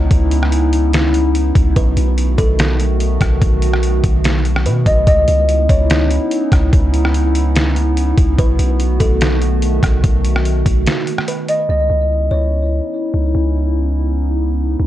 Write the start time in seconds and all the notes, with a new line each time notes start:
Already playing: B3 C#4 D#4 E4
0.11 C#2, kick, closed hi-hat
0.31 closed hi-hat
0.43 cross-stick
0.52 closed hi-hat
0.73 closed hi-hat
0.93 snare, closed hi-hat
1.14 closed hi-hat
1.35 closed hi-hat
1.55 C#2, kick, closed hi-hat
1.76 B1 D#3 A3 B3 F#4 B4, kick, closed hi-hat
1.97 B1, closed hi-hat
2.18 closed hi-hat
2.38 B1 A4, kick, closed hi-hat
2.59 snare, closed hi-hat
2.80 closed hi-hat
3.00 closed hi-hat
3.21 B1, kick, cross-stick, closed hi-hat
3.42 B1, kick, closed hi-hat
3.62 closed hi-hat
3.74 cross-stick
3.83 closed hi-hat
4.04 B1, kick, closed hi-hat
4.24 snare, closed hi-hat
4.45 closed hi-hat
4.56 cross-stick
4.66 B2 B4, closed hi-hat
4.86 B1 D#5, kick, closed hi-hat
5.07 C#2 C#4 D#4 E4 D#5, kick, closed hi-hat
5.28 C#2, closed hi-hat
5.49 closed hi-hat
5.69 C#2 C#5, kick, closed hi-hat
5.90 snare, closed hi-hat
6.11 closed hi-hat
6.31 closed hi-hat
6.52 C#2, kick, cross-stick, closed hi-hat
6.73 C#2, kick, closed hi-hat
6.94 closed hi-hat
7.05 cross-stick
7.14 closed hi-hat
7.35 closed hi-hat
7.56 snare, closed hi-hat
7.76 closed hi-hat
7.97 closed hi-hat
8.17 C#2, kick, closed hi-hat
8.38 B1 D#3 A3 F#4 B4, kick, closed hi-hat
8.59 B1, closed hi-hat
8.80 closed hi-hat
9.00 B1 A4, kick, closed hi-hat
9.21 snare, closed hi-hat
9.42 closed hi-hat
9.62 closed hi-hat
9.83 B1, kick, cross-stick, closed hi-hat
10.04 B1, kick, closed hi-hat
10.24 closed hi-hat
10.36 cross-stick
10.45 closed hi-hat
10.66 B1, kick, closed hi-hat
10.87 snare, closed hi-hat
11.07 closed hi-hat
11.18 cross-stick
11.28 B4, closed hi-hat
11.49 D#5, closed hi-hat
11.69 C#2 B3 C#4 D#4 E4 D#5
11.90 C#2
12.31 C#2 C#5
13.14 C#2
13.35 C#2
14.80 C#2